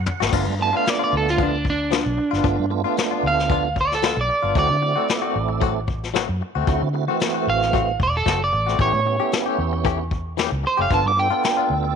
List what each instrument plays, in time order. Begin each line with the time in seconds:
0.06 tonewheel organ F#5, muted clean electric guitar stroke, floor tom
0.20 fingered electric bass G#1, clean electric guitar A3 C4 F#4, snare
0.32 fingered electric bass G1, clean electric guitar F3 B3 D4 F4, tonewheel organ A3 B3 D4 F4, kick, closed hi-hat, crash
0.47 fingered electric bass G2, muted clean electric guitar stroke
0.59 tonewheel organ A3 B3 D4 F4, clean electric guitar A5, muted clean electric guitar stroke
0.73 tonewheel organ A3 B3 D4 F4, clean electric guitar B3 D4 F4 F5
0.86 clean electric guitar D5, muted clean electric guitar stroke, snare, closed hi-hat
0.99 clean electric guitar B3 D4 F4
1.04 clean electric guitar D5
1.13 fingered electric bass D2
1.17 clean electric guitar A4
1.26 muted clean electric guitar stroke, snare
1.30 clean electric guitar F4
1.38 clean electric guitar F3 B3 D4 F4, kick, closed hi-hat
1.43 clean electric guitar D4
1.52 muted clean electric guitar stroke
1.65 muted clean electric guitar stroke, kick
1.70 clean electric guitar D4
1.91 clean electric guitar F3 B3 D4 F4, snare, closed hi-hat
2.05 fingered electric bass B1, muted clean electric guitar stroke
2.18 muted clean electric guitar stroke
2.31 fingered electric bass G1, clean electric guitar B3 D4 F4, snare
2.44 fingered electric bass G1, clean electric guitar F3 B3 D4 F4, tonewheel organ A3 B3 D4 F4, kick, closed hi-hat
2.58 fingered electric bass G2, muted clean electric guitar stroke
2.70 tonewheel organ A3 B3 D4 F4, muted clean electric guitar stroke
2.84 tonewheel organ A3 B3 D4 F4, clean electric guitar B3 D4 F4
2.97 muted clean electric guitar stroke, snare, closed hi-hat
3.11 clean electric guitar B3 D4 F4
3.23 fingered electric bass D2
3.27 clean electric guitar F5
3.38 muted clean electric guitar stroke, snare
3.49 clean electric guitar F3 B3 D4 F4, kick, closed hi-hat
3.64 muted clean electric guitar stroke
3.76 muted clean electric guitar stroke, kick
3.81 clean electric guitar D5
3.91 clean electric guitar A4, snare
4.02 clean electric guitar F3 B3 D4 F4, snare, closed hi-hat
4.17 fingered electric bass B1, muted clean electric guitar stroke
4.21 clean electric guitar D5
4.29 muted clean electric guitar stroke
4.42 fingered electric bass G1, clean electric guitar B3 D4 F4
4.55 fingered electric bass D2, clean electric guitar F#3 A3 C4 F#4 D5, tonewheel organ A3 C4 E4 F#4, kick, closed hi-hat
4.70 fingered electric bass D3, muted clean electric guitar stroke
4.82 tonewheel organ A3 C4 E4 F#4, muted clean electric guitar stroke
4.96 tonewheel organ A3 C4 E4 A4, clean electric guitar A3 C4 F#4
5.08 muted clean electric guitar stroke, snare, closed hi-hat
5.22 clean electric guitar A3 C4 F#4
5.36 fingered electric bass A1
5.49 muted clean electric guitar stroke
5.61 clean electric guitar F#3 A3 C4 F#4, kick, closed hi-hat
5.75 muted clean electric guitar stroke
5.88 muted clean electric guitar stroke, kick
6.03 snare
6.14 clean electric guitar F#3 A3 C4 F#4, snare, closed hi-hat
6.29 fingered electric bass F#2, muted clean electric guitar stroke
6.41 muted clean electric guitar stroke
6.55 fingered electric bass D2, clean electric guitar A3 C4 F#4
6.67 fingered electric bass D2, clean electric guitar F#3 A3 C4 F#4, tonewheel organ A3 C4 E4 F#4, kick, closed hi-hat
6.82 fingered electric bass D3, muted clean electric guitar stroke
6.93 tonewheel organ A3 C4 E4 F#4, muted clean electric guitar stroke
7.07 tonewheel organ E3 A3 C4 F#4, clean electric guitar A3 C4 F#4
7.20 muted clean electric guitar stroke, snare, closed hi-hat
7.34 clean electric guitar A3 C4 F#4
7.47 fingered electric bass A1, clean electric guitar F5
7.61 muted clean electric guitar stroke, snare
7.73 clean electric guitar F#3 A3 C4 F#4, kick, closed hi-hat
7.87 muted clean electric guitar stroke
8.00 fingered electric bass E1, clean electric guitar D5, muted clean electric guitar stroke, kick
8.17 clean electric guitar A4
8.26 fingered electric bass F#1, clean electric guitar F#3 A3 C4 F#4, kick, snare, closed hi-hat
8.40 clean electric guitar D5, muted clean electric guitar stroke
8.52 fingered electric bass A1, muted clean electric guitar stroke
8.66 clean electric guitar A3 C4 F#4, snare
8.78 fingered electric bass A1, clean electric guitar E3 A3 C#4 G4 C#5, tonewheel organ B3 C#4 E4 G4, kick, closed hi-hat
8.93 fingered electric bass A2, muted clean electric guitar stroke
9.05 tonewheel organ B3 C#4 E4 G4, muted clean electric guitar stroke
9.19 clean electric guitar A3 C#4 G4, tonewheel organ B3 C#4 E4 G4
9.32 muted clean electric guitar stroke, snare, closed hi-hat
9.46 clean electric guitar A3 C#4 G4
9.58 fingered electric bass E2
9.73 muted clean electric guitar stroke
9.85 clean electric guitar E3 A3 C#4 G4, kick, closed hi-hat
9.99 muted clean electric guitar stroke
10.11 muted clean electric guitar stroke, kick
10.37 clean electric guitar E3 A3 C#4 G4, snare, closed hi-hat
10.52 fingered electric bass C#2, muted clean electric guitar stroke
10.63 clean electric guitar C5, muted clean electric guitar stroke
10.77 fingered electric bass F#1, clean electric guitar A3 C#4 G4
10.82 clean electric guitar F5
10.90 fingered electric bass G1, clean electric guitar F3 B3 D4 F4 A5, tonewheel organ B3 D4 F4 A4, kick, closed hi-hat
11.05 fingered electric bass G2, clean electric guitar D6, muted clean electric guitar stroke
11.16 tonewheel organ B3 D4 F4 A4, clean electric guitar G5, muted clean electric guitar stroke
11.30 tonewheel organ B3 D4 F4 A4, clean electric guitar B3 D4 F4
11.43 muted clean electric guitar stroke, snare, closed hi-hat
11.57 clean electric guitar B3 D4 F4
11.70 fingered electric bass D2
11.84 muted clean electric guitar stroke